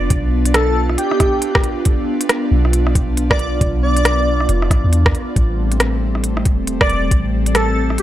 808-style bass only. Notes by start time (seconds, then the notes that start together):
0.10 B1
2.51 B1
3.61 B1
4.49 F1
4.71 A1
4.84 E2
5.36 A1
6.46 E1
6.89 E1
7.11 A1